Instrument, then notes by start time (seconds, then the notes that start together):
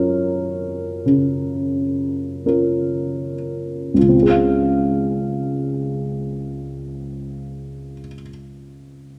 upright piano
Already playing: F#2 C#4 F4 A#4 C#5
1.06 C#3
2.46 C#4 F4 A#4
3.94 C#2 F4
4.02 C#3
4.09 C4
4.15 F4
4.22 G#4
4.30 F5